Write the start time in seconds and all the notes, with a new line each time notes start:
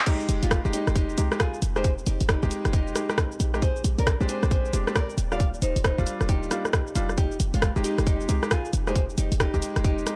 0.06 G#3 C4 D#4 G4, kick, closed hi-hat, crash, shaker
0.20 shaker
0.29 F1, closed hi-hat, shaker
0.43 F1 G#3 F4, closed hi-hat, shaker
0.51 kick, cross-stick, closed hi-hat, shaker
0.65 F1 G#3 D#4 G4, shaker
0.73 D#4 G4, closed hi-hat, shaker
0.87 F1, cross-stick, closed hi-hat, shaker
0.95 D#4 G4, kick, closed hi-hat, shaker
1.09 shaker
1.18 C2 G#3 D#4 G4, closed hi-hat, shaker
1.32 G#3 D#4 G4, cross-stick, shaker
1.40 F4 G#4, kick, cross-stick, closed hi-hat, shaker
1.54 shaker
1.62 F1, closed hi-hat, shaker
1.76 G#3 D#4 G4 G#4 C5, cross-stick, shaker
1.84 F4, kick, closed hi-hat, shaker
1.98 shaker
2.06 F1 D#4 G4, closed hi-hat, shaker
2.21 F1, closed hi-hat, shaker
2.29 D#4 G4, kick, cross-stick, closed hi-hat, shaker
2.43 F1 G#3 D#4 G4, kick, shaker
2.51 closed hi-hat, shaker
2.65 F1, cross-stick, closed hi-hat, shaker
2.73 D#4 G4, kick, closed hi-hat, shaker
2.87 shaker
2.95 G#3 D#4 G4, cross-stick, closed hi-hat, shaker
3.09 G#3 D#4 G4, cross-stick, shaker
3.18 kick, cross-stick, closed hi-hat, shaker
3.32 shaker
3.40 A#1, closed hi-hat, shaker
3.54 G#3 D#4 G4, cross-stick, shaker
3.62 G#4 C5 D5, kick, closed hi-hat, shaker
3.76 shaker
3.84 A#1, closed hi-hat, shaker
3.98 A#1 D4 A#4, closed hi-hat, shaker
4.07 kick, cross-stick, closed hi-hat, shaker
4.21 A#1 G#3 C4 D4 G4, shaker
4.29 G#4 C5, closed hi-hat, shaker
4.43 A#1, cross-stick, closed hi-hat, shaker
4.51 G#4 C5, kick, closed hi-hat, shaker
4.65 shaker
4.73 F1 G#3 C4 D4 G4, closed hi-hat, shaker
4.87 G#3 C4 D4 G4, cross-stick, shaker
4.95 A#4 D5, kick, cross-stick, closed hi-hat, shaker
5.10 shaker
5.18 D#1 A#3 F4, closed hi-hat, shaker
5.32 G3 D4 F4 D5 F5, cross-stick, shaker
5.40 kick, closed hi-hat, shaker
5.54 shaker
5.62 D#1 D#4 C5, closed hi-hat, shaker
5.76 D#1, closed hi-hat, shaker
5.84 D#4 C5, kick, cross-stick, closed hi-hat, shaker
5.98 D#1 G3 D4 F4, kick, shaker
6.07 closed hi-hat, shaker
6.21 D#1, cross-stick, closed hi-hat, shaker
6.29 D#4 G4, kick, closed hi-hat, shaker
6.43 shaker
6.51 G3 D4 F4, cross-stick, closed hi-hat, shaker
6.65 cross-stick, shaker
6.73 kick, cross-stick, closed hi-hat, shaker
6.87 shaker
6.95 F1 G3 D4 F4, closed hi-hat, shaker
7.09 cross-stick, shaker
7.18 G#3 C4 D#4 G4, kick, closed hi-hat, shaker
7.32 shaker
7.40 F1, closed hi-hat, shaker
7.54 F1 G#3 F4, closed hi-hat, shaker
7.62 kick, cross-stick, closed hi-hat, shaker
7.76 F1 G#3 D#4 G4, shaker
7.84 D#4 G4, closed hi-hat, shaker
7.98 F1, cross-stick, closed hi-hat, shaker
8.06 D#4 G4, kick, closed hi-hat, shaker
8.21 shaker
8.29 C2 G#3 D#4 G4, closed hi-hat, shaker
8.43 G#3 D#4 G4, cross-stick, shaker
8.51 F4 G#4, kick, cross-stick, closed hi-hat, shaker
8.65 shaker
8.73 F1, closed hi-hat, shaker
8.87 G#3 D#4 G4 G#4 C5, cross-stick, shaker
8.96 kick, closed hi-hat, shaker
9.10 shaker
9.18 F1 D#4 G4, closed hi-hat, shaker
9.32 F1, closed hi-hat, shaker
9.40 D#4 G4, kick, cross-stick, closed hi-hat, shaker
9.54 F1 G#3 D#4 G4, kick, shaker
9.62 closed hi-hat, shaker
9.76 F1, cross-stick, closed hi-hat, shaker
9.84 D#4 G4, kick, closed hi-hat, shaker
9.98 shaker
10.07 G#3 D#4 G4, cross-stick, closed hi-hat, shaker